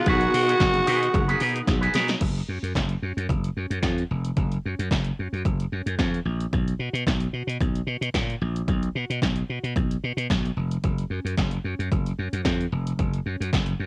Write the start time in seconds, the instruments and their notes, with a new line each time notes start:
Already playing: string section D#3 B3 F#4 G#4 F#5
0.06 slap bass B1, clean electric guitar D#4 G#4 B4, tenor saxophone F#4, kick, closed hi-hat
0.21 closed hi-hat
0.34 slap bass B2, muted clean electric guitar stroke, open hi-hat
0.48 clean electric guitar D#4 G#4 B4, closed hi-hat
0.60 slap bass F#1, kick, snare, clap, closed hi-hat
0.74 muted clean electric guitar stroke, closed hi-hat
0.86 slap bass B2, clean electric guitar D#4 G#4 B4, open hi-hat
1.01 muted clean electric guitar stroke, closed hi-hat
1.14 slap bass F#1, muted clean electric guitar stroke, kick, closed hi-hat
1.28 clean electric guitar D#4 G#4 B4, closed hi-hat
1.40 slap bass B2, clean electric guitar D#4 G#4 B4, open hi-hat
1.55 muted clean electric guitar stroke, closed hi-hat
1.68 slap bass B1, muted clean electric guitar stroke, kick, snare, closed hi-hat
1.81 clean electric guitar D#4 G#4 B4, closed hi-hat
1.94 slap bass B2, clean electric guitar D#4 G#4 B4, snare, open hi-hat
2.08 muted clean electric guitar stroke, snare, closed hi-hat
2.21 slap bass F#1, kick, closed hi-hat, crash
2.35 closed hi-hat
2.49 slap bass F#2
2.63 slap bass F#2, closed hi-hat
2.75 slap bass F#1, kick, snare, clap, closed hi-hat
2.89 closed hi-hat
3.02 slap bass F#2
3.17 slap bass F#2, closed hi-hat
3.29 slap bass F#1, kick, closed hi-hat
3.44 closed hi-hat
3.57 slap bass F#2
3.70 slap bass F#2, closed hi-hat
3.83 slap bass F2, kick, snare, clap, closed hi-hat
3.98 closed hi-hat
4.11 slap bass F1
4.25 closed hi-hat
4.37 slap bass F#1, kick, closed hi-hat
4.52 closed hi-hat
4.65 slap bass F#2
4.79 slap bass F#2, closed hi-hat
4.91 slap bass F#1, kick, snare, clap, closed hi-hat
5.05 closed hi-hat
5.19 slap bass F#2
5.33 slap bass F#2, closed hi-hat
5.45 slap bass F#1, kick, closed hi-hat
5.60 closed hi-hat
5.72 slap bass F#2
5.86 slap bass F#2, closed hi-hat
5.99 slap bass F2, kick, snare, clap, closed hi-hat
6.14 closed hi-hat
6.25 slap bass A#1
6.40 closed hi-hat
6.53 slap bass B1, kick, closed hi-hat
6.68 closed hi-hat
6.79 slap bass B2
6.93 slap bass B2, closed hi-hat
7.07 slap bass B1, kick, snare, clap, closed hi-hat
7.20 closed hi-hat
7.33 slap bass B2
7.47 slap bass B2, closed hi-hat
7.61 slap bass B1, kick, closed hi-hat
7.75 closed hi-hat
7.87 slap bass B2
8.01 slap bass B2, closed hi-hat
8.14 slap bass A#2, kick, snare, clap, closed hi-hat
8.30 closed hi-hat
8.41 slap bass A#1
8.56 closed hi-hat
8.68 slap bass B1, kick, closed hi-hat
8.83 closed hi-hat
8.95 slap bass B2
9.10 slap bass B2, closed hi-hat
9.22 slap bass B1, kick, snare, clap, closed hi-hat
9.36 closed hi-hat
9.50 slap bass B2
9.63 slap bass B2, closed hi-hat
9.76 slap bass B1, kick, closed hi-hat
9.91 closed hi-hat
10.04 slap bass B2
10.17 slap bass B2, closed hi-hat
10.30 slap bass B1, kick, snare, clap, closed hi-hat
10.45 closed hi-hat
10.56 slap bass F1
10.71 closed hi-hat
10.84 slap bass F#1, kick, closed hi-hat
10.98 closed hi-hat
11.10 slap bass F#2
11.25 slap bass F#2, closed hi-hat
11.38 slap bass F#1, kick, snare, clap, closed hi-hat
11.51 closed hi-hat
11.64 slap bass F#2
11.79 slap bass F#2, closed hi-hat
11.92 slap bass F#1, kick, closed hi-hat
12.06 closed hi-hat
12.19 slap bass F#2
12.33 slap bass F#2, closed hi-hat
12.45 slap bass F2, kick, snare, clap, closed hi-hat
12.61 closed hi-hat
12.72 slap bass F1
12.87 closed hi-hat
12.99 slap bass F#1, kick, closed hi-hat
13.14 closed hi-hat
13.26 slap bass F#2
13.40 slap bass F#2, closed hi-hat
13.53 slap bass F#1, kick, snare, clap, closed hi-hat
13.66 closed hi-hat
13.79 slap bass F#2